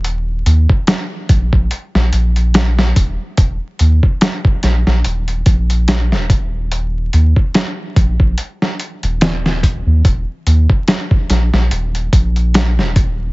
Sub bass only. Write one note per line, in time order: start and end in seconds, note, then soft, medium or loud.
0.00 0.43 D#1 medium
0.46 0.67 D#2 loud
1.29 1.50 A#1 loud
1.53 1.69 A#1 loud
1.95 2.11 A#1 medium
2.13 2.93 A#1 loud
3.38 3.58 D#1 loud
3.80 4.00 D#2 loud
4.63 4.84 A#1 medium
4.87 5.03 A#1 loud
5.05 5.42 D#1 loud
5.46 6.13 A#1 loud
6.12 7.10 D#1 medium
7.13 7.34 D#2 loud
7.97 8.17 A#1 medium
8.20 8.36 A#1 loud
9.03 9.82 D#1 loud
9.86 10.02 D#2 medium
10.05 10.25 D#1 loud
10.46 10.67 D#2 loud
11.30 11.50 A#1 loud
11.53 11.69 A#1 loud
11.71 12.08 D#1 loud
12.13 12.79 A#1 loud
12.77 13.33 D#1 medium